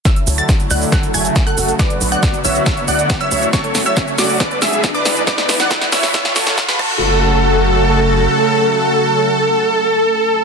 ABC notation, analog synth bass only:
X:1
M:4/4
L:1/8
Q:1/4=138
K:F#m
V:1 name="Analog synth bass" clef=bass
z D,, z D,, z F,,, z F,,, | z B,,, z B,,, z D,, z D,, | z F,,, z F,,, z G,,, z G,,, | z B,,, z B,,, z F,,, z F,,,- |
F,,,6 z2 | z8 |]